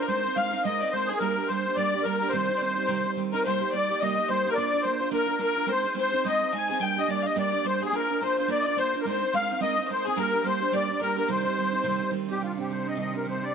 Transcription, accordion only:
0.07 0.37 C5 medium
0.36 0.65 F5 medium
0.65 0.93 D#5 medium
0.92 1.09 C5 medium
1.07 1.19 G#4 medium
1.18 1.48 A#4 medium
1.47 1.77 C5 medium
1.75 2.05 D5 medium
2.02 2.17 A#4 medium
2.18 2.32 A#4 medium
2.29 3.11 C5 medium
3.33 3.44 A#4 medium
3.46 3.74 C5 medium
3.76 4.03 D5 medium
4.01 4.30 D#5 medium
4.30 4.50 C5 loud
4.52 4.57 A#4 medium
4.52 4.85 D5 loud
4.82 5.09 C5 medium
5.13 5.41 A#4 medium
5.43 5.71 A#4 medium
5.71 5.96 C5 loud
6.01 6.27 C5 loud
6.28 6.55 D#5 loud
6.57 6.84 G#5 loud
6.83 6.98 G5 loud
7.00 7.10 D#5 loud
7.10 7.26 D5 medium
7.26 7.38 D#5 medium
7.39 7.67 D5 medium
7.68 7.83 C5 medium
7.85 7.95 G#4 medium
7.96 8.23 A#4 medium
8.25 8.37 C5 medium
8.38 8.50 C5 medium
8.52 8.79 D5 loud
8.79 9.00 C5 medium
9.01 9.06 A#4 medium
9.08 9.35 C5 medium
9.35 9.52 F5 loud
9.53 9.60 F5 medium
9.62 9.90 D#5 loud
9.91 10.07 C5 medium
10.08 10.19 G#4 medium
10.19 10.47 A#4 medium
10.48 10.75 C5 medium
10.75 11.00 D5 medium
11.02 11.17 A#4 medium
11.19 11.30 A#4 medium
11.31 12.10 C5 medium
12.31 12.43 G4 medium
12.43 12.57 F4 medium
12.60 12.71 G4 medium
12.72 12.88 C5 medium
12.88 12.98 D#5 medium
13.00 13.15 D#5 medium
13.17 13.27 A#4 medium
13.29 13.44 C5 medium
13.44 13.55 D5 medium

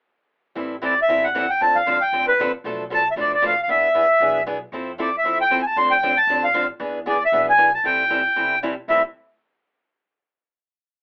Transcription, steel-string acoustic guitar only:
0.55 0.74 E3 medium
0.55 0.74 G3 medium
0.55 0.75 C4 medium
0.55 0.75 E4 medium
0.55 0.75 A4 medium
0.82 0.92 E3 medium
0.82 0.93 G3 medium
0.82 0.93 C4 medium
0.82 0.93 E4 medium
0.82 0.93 A4 medium
1.08 1.27 E3 medium
1.08 1.27 G3 medium
1.08 1.27 C4 medium
1.08 1.27 E4 medium
1.08 1.28 A4 medium
1.35 1.45 E3 medium
1.35 1.45 G3 medium
1.35 1.45 C4 medium
1.35 1.45 E4 medium
1.35 1.45 A4 medium
1.61 1.79 D3 medium
1.61 1.79 F3 medium
1.61 1.79 C4 medium
1.61 1.80 D4 medium
1.61 1.80 A4 medium
1.86 1.97 D3 medium
1.86 1.97 F3 medium
1.86 1.97 C4 medium
1.86 1.97 D4 medium
1.86 1.98 A4 medium
2.13 2.31 D3 medium
2.13 2.31 F3 medium
2.13 2.31 C4 medium
2.13 2.32 D4 medium
2.13 2.32 A4 medium
2.40 2.49 D3 medium
2.40 2.50 F3 medium
2.40 2.50 C4 medium
2.40 2.50 D4 medium
2.40 2.50 A4 medium
2.65 2.83 B2 medium
2.65 2.83 F3 medium
2.65 2.83 A3 medium
2.65 2.83 D4 medium
2.65 2.84 A4 medium
2.90 3.01 B2 medium
2.90 3.01 F3 medium
2.90 3.01 A3 medium
2.90 3.01 D4 medium
2.90 3.02 A4 medium
3.16 3.35 B2 medium
3.16 3.35 F3 medium
3.16 3.35 A3 medium
3.16 3.35 D4 medium
3.16 3.35 A4 medium
3.42 3.52 B2 medium
3.42 3.52 F3 medium
3.42 3.53 A3 medium
3.42 3.53 D4 medium
3.42 3.53 A4 medium
3.69 3.87 E3 medium
3.69 3.87 B3 medium
3.69 3.87 D4 medium
3.69 3.87 G#4 medium
3.94 4.05 E3 medium
3.94 4.05 B3 medium
3.94 4.05 D4 medium
3.94 4.05 G#4 medium
4.20 4.38 E3 medium
4.20 4.39 B3 medium
4.20 4.39 D4 medium
4.20 4.39 G#4 medium
4.46 4.56 E3 medium
4.46 4.56 B3 medium
4.46 4.57 D4 medium
4.46 4.57 G#4 loud
4.73 4.90 F3 medium
4.73 4.91 C4 medium
4.73 4.91 E4 medium
4.73 4.91 A4 medium
4.98 5.08 F3 medium
4.98 5.09 C4 medium
4.98 5.09 E4 medium
4.98 5.09 A4 medium
5.25 5.42 F3 medium
5.25 5.43 C4 medium
5.25 5.43 E4 medium
5.25 5.43 A4 medium
5.51 5.60 F3 medium
5.51 5.61 C4 medium
5.51 5.61 E4 medium
5.51 5.61 A4 medium
5.76 5.94 D3 medium
5.76 5.94 F3 medium
5.76 5.95 C4 medium
5.76 5.95 D4 medium
5.76 5.95 A4 medium
6.03 6.13 D3 medium
6.03 6.13 F3 medium
6.03 6.13 C4 medium
6.03 6.13 D4 medium
6.03 6.13 A4 medium
6.29 6.47 D3 medium
6.29 6.47 F3 medium
6.29 6.47 C4 medium
6.29 6.47 D4 medium
6.29 6.48 A4 medium
6.54 6.64 D3 medium
6.54 6.64 F3 medium
6.54 6.64 C4 medium
6.54 6.64 D4 medium
6.54 6.65 A4 medium
6.80 6.98 E3 medium
6.80 6.98 B3 medium
6.80 6.98 D4 medium
6.80 6.99 G#4 medium
7.06 7.16 E3 medium
7.06 7.16 B3 medium
7.06 7.16 D4 medium
7.06 7.17 G#4 medium
7.33 7.51 E3 medium
7.33 7.51 B3 medium
7.33 7.51 D4 medium
7.33 7.51 G#4 medium
7.57 7.68 E3 medium
7.57 7.68 B3 medium
7.57 7.68 D4 medium
7.57 7.69 G#4 medium
7.84 8.02 E3 medium
7.84 8.02 G3 medium
7.84 8.03 C4 medium
7.84 8.03 E4 medium
7.84 8.03 A4 medium
8.10 8.20 E3 medium
8.10 8.20 G3 medium
8.10 8.20 C4 medium
8.10 8.21 E4 medium
8.10 8.21 A4 medium
8.36 8.54 E3 medium
8.36 8.54 G3 medium
8.36 8.54 C4 medium
8.36 8.55 E4 medium
8.36 8.55 A4 medium
8.63 8.73 E3 medium
8.63 8.73 G3 medium
8.63 8.73 C4 medium
8.63 8.73 E4 medium
8.63 8.73 A4 medium
8.88 9.00 A2 medium
8.88 9.00 E3 medium
8.88 9.00 G3 medium
8.88 9.01 C4 medium
8.88 9.01 E4 medium
8.88 9.01 A4 medium

